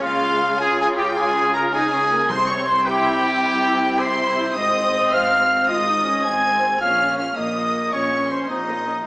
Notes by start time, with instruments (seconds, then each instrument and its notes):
0.02 double bass section C#2, cello section C#3, viola section G#3, trumpet section F4, violin section F5
0.59 viola section F4, trumpet section G#4, violin section G#5
0.78 trumpet section G#4, violin section G#5
0.97 trumpet section G4, violin section G5
1.16 trumpet section G#4, violin section G#5
1.54 trumpet section A#4, violin section A#5
1.73 viola section D#4, trumpet section G#4, violin section G#5
1.92 viola section C#4
2.11 viola section A#3
2.29 double bass section C2, timpani C3, cello section C3, viola section C4, trumpet section C5, violin section C6
2.47 trumpet section C#5, violin section C#6
2.67 trumpet section C5, violin section C6
2.86 viola section E4, trumpet section G4, violin section G5
3.43 viola section E4
3.99 trumpet section C5, violin section C6
4.55 double bass section G#1, cello section G#2, viola section C4, trumpet section D#5, violin section D#6
5.12 double bass section G#1, cello section G#2, trumpet section F5, violin section F6
5.68 double bass section G#1, cello section G#2, viola section F4, trumpet section D#5, violin section D#6
5.87 viola section D#4
6.04 viola section C#4
6.24 double bass section G#1, cello section G#2, viola section C4, trumpet section G#5, violin section G#6
6.80 double bass section A#1, cello section A#2, viola section C#4, trumpet section F5, violin section F6
7.17 trumpet section F5, violin section F6
7.36 double bass section A#1, cello section A#2, viola section A#3, trumpet section D#5, violin section D#6
7.91 double bass section A#1, cello section A#2, viola section C#4, trumpet section C#5, violin section C#6
8.30 trumpet section C5, violin section C6
8.48 double bass section A#1, cello section A#2, viola section C4, trumpet section D#4, violin section D#5
8.68 viola section A#3
8.88 viola section C#4